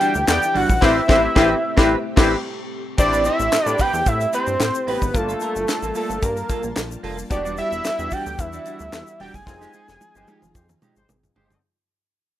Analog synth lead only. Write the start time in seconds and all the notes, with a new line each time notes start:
Already playing: G5
0.29 G5
0.56 F#5
0.83 E5
2.99 D5
3.26 E5
3.65 D5
3.81 G5
4.08 E5
4.35 C5
4.89 B4
5.16 A4
5.97 A4
6.24 A#4
7.32 D5
7.58 E5
8.13 G5
8.40 E5
9.21 G5
9.35 G#5